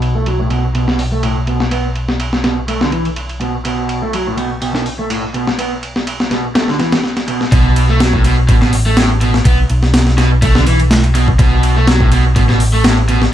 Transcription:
Already playing: picked electric bass B1, overdriven electric guitar B2
0.02 ride
0.15 overdriven electric guitar A3
0.26 overdriven electric guitar F#3, ride
0.39 overdriven electric guitar A2
0.50 overdriven electric guitar B2, ride
0.75 overdriven electric guitar B2, ride
0.88 overdriven electric guitar B2, snare
0.99 open hi-hat
1.12 overdriven electric guitar A3
1.23 overdriven electric guitar A2, ride
1.47 overdriven electric guitar B2, ride
1.60 snare
1.71 overdriven electric guitar B3, ride
1.95 ride
2.08 snare
2.20 ride
2.33 snare
2.44 overdriven electric guitar B2, snare, ride
2.68 overdriven electric guitar A3, ride
2.81 overdriven electric guitar D3, snare
2.92 overdriven electric guitar E3, ride
3.05 ride
3.16 ride
3.29 ride
3.41 overdriven electric guitar B2, ride
3.65 overdriven electric guitar B2, ride
3.89 ride
4.02 overdriven electric guitar A3
4.13 overdriven electric guitar F#3, ride
4.26 overdriven electric guitar A2
4.38 overdriven electric guitar B2, ride
4.62 overdriven electric guitar B2, ride
4.75 overdriven electric guitar B2, snare
4.86 open hi-hat
4.99 overdriven electric guitar A3
5.10 overdriven electric guitar A2, ride
5.34 overdriven electric guitar B2, ride
5.47 snare
5.59 overdriven electric guitar B3, ride
5.83 ride
5.96 snare
6.07 ride
6.20 snare
6.31 overdriven electric guitar B2, snare, ride
6.55 overdriven electric guitar A3, snare, ride
6.68 overdriven electric guitar D3, snare
6.79 overdriven electric guitar E3, snare, ride
6.92 snare, ride
7.04 snare
7.17 snare, ride
7.28 overdriven electric guitar B2, ride
7.41 snare
7.52 picked electric bass B1, overdriven electric guitar B2, kick, ride
7.76 ride
7.89 overdriven electric guitar A3
8.00 overdriven electric guitar F#3, snare, ride
8.13 overdriven electric guitar A2, kick
8.24 overdriven electric guitar B2, ride
8.49 picked electric bass A1, overdriven electric guitar B2, kick, ride
8.62 overdriven electric guitar B2, snare
8.73 open hi-hat
8.86 overdriven electric guitar A3
8.97 overdriven electric guitar A2, snare, ride
9.21 overdriven electric guitar B2, ride
9.34 snare
9.45 picked electric bass B1, overdriven electric guitar B3, kick, ride
9.70 picked electric bass B1, ride
9.83 snare
9.94 snare, ride
10.07 snare
10.18 overdriven electric guitar B2, snare, ride
10.42 overdriven electric guitar A3, kick, ride
10.55 overdriven electric guitar D3, snare
10.67 overdriven electric guitar E3, ride
10.80 ride
10.91 snare, ride
11.04 ride
11.15 overdriven electric guitar B2, ride
11.28 kick
11.39 picked electric bass B1, overdriven electric guitar B2, kick, ride
11.63 ride
11.76 overdriven electric guitar A3
11.87 overdriven electric guitar F#3, snare, ride
12.01 overdriven electric guitar A2, kick
12.12 overdriven electric guitar B2, ride
12.36 picked electric bass A1, overdriven electric guitar B2, kick, ride
12.49 overdriven electric guitar B2, snare
12.60 open hi-hat
12.73 overdriven electric guitar A3
12.84 overdriven electric guitar A2, snare, ride
13.08 overdriven electric guitar B2, ride
13.22 snare

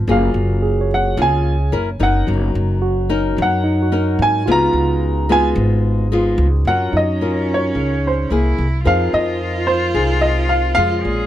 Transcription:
0.07 upright bass F#1, nylon-string guitar F#3 A#3 F4 G#4, grand piano F5
0.34 upright bass F#1
0.62 tine electric piano G#4
0.81 tine electric piano C#5
0.94 grand piano F#5
1.17 upright bass C#2, nylon-string guitar C#3 A#3 F4 G#4
1.22 grand piano G#5
1.72 upright bass F#1, nylon-string guitar C#4 E4 A#4
1.99 upright bass F#1, nylon-string guitar C#4 D#4 A#4, grand piano F#5
2.27 upright bass F#1, nylon-string guitar F#3
2.55 upright bass F#1
2.82 tine electric piano F#4
3.09 nylon-string guitar C#4 D#4 A#4
3.37 upright bass F#2, nylon-string guitar F#3
3.42 grand piano F#5
3.64 tine electric piano D#4
3.82 tine electric piano F#4
3.92 nylon-string guitar C#4 D#4 A#4
4.19 upright bass G#2, grand piano G#5
4.46 upright bass C#2, nylon-string guitar C#3 G#3 B3 F4, tine electric piano F4
4.52 grand piano A#5
4.73 upright bass C#2
5.29 nylon-string guitar G#3 B3 F4, grand piano G#5
5.56 upright bass G#1, nylon-string guitar G#2
6.12 nylon-string guitar G#3 B3 F4
6.38 upright bass C#2
6.65 upright bass F#2, nylon-string guitar F#3 C#4 F4 A#4, cello C#4, grand piano F#5
6.93 upright bass F#2, tine electric piano D#4, grand piano D#5
7.21 nylon-string guitar C#4 F4 A#4
7.54 grand piano C#5
7.75 upright bass C#2, nylon-string guitar C#3
8.07 grand piano C5
8.30 upright bass C2, nylon-string guitar A#3 E4 G#4, cello E4
8.58 upright bass C2
8.84 upright bass F2, nylon-string guitar F3 C4 D#4 G#4, cello F4, tine electric piano A#4, grand piano F5
9.13 upright bass F2, grand piano D#5
9.67 grand piano C5
9.94 upright bass C2, nylon-string guitar C3 C4 D#4 G#4
10.21 grand piano D#5
10.49 grand piano F5
10.75 upright bass F2, nylon-string guitar G#3 C#4 F4, grand piano F5
11.03 upright bass A#1, nylon-string guitar A#2, cello G#4

